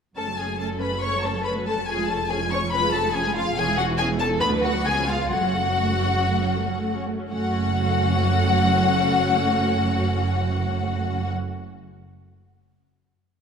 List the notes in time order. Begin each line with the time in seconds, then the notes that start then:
0.16 F#1 F#2 A3 C#4 A4 A5
0.27 F#3 A3
0.38 A3 C#4 G#4 G#5
0.49 F#3 A3
0.60 A3 C#4 A4 A5
0.70 F#3 A3
0.80 A3 C#4 B4 B5
0.92 F#3 A3
1.02 A3 C#4 C#5 C#6
1.14 F#3 A3
1.23 A3 C#4 A4 A5
1.35 F#3 A3
1.45 A3 C#4 B4 B5
1.57 F#3 A3
1.67 A3 C#4 A4 A5
1.78 F#3 A3
1.87 F1 F2 F3 C#4 G#4 G#5
1.99 G#3 F4
2.09 F3 C#4 A4 A5
2.20 G#3 F4
2.29 F3 C#4 G#4 G#5
2.41 G#3 F4
2.50 F3 C#4 C#5 C#6
2.61 G#3 F4
2.71 F3 C#4 B4 B5
2.82 G#3 F4
2.93 F3 C#4 A4 A5
3.03 G#3 F4
3.14 F3 C#4 G#4 G#5
3.25 G#3 F4
3.35 F3 C#4 F4 F5
3.46 G#3 F4
3.57 E1 E2 E3 C#4 G#4 G#5
3.68 G#3 E4
3.77 E3 C#4 F#4 F#5
3.89 G#3 E4
3.98 E3 C#4 G#4 G#5
4.08 G#3 E4
4.20 E3 C#4 A4 A5
4.31 G#3 E4
4.41 D2 D3 B3 B4 B5
4.52 F#3 D4
4.63 D3 B3 F#4 F#5
4.74 F#3 D4
4.85 C#2 G#3 B3 G#4 G#5
4.97 F3 C#4
5.08 G#3 B3 F4 F5
5.21 F3 C#4
5.31 F#1 F#2 A3 F#4 F#5
5.43 F#3 C#4
5.56 A3
5.68 F#3 C#4
5.80 A3
5.93 F#3 C#4
6.06 A3
6.17 F#3 C#4
6.31 A3
6.43 F#3 C#4
6.56 A3
6.68 F#3 C#4
6.81 A3
6.94 F#3 C#4
7.07 A3
7.20 F#3 C#4
7.31 F#1 F#2 A3 C#4 F#4 F#5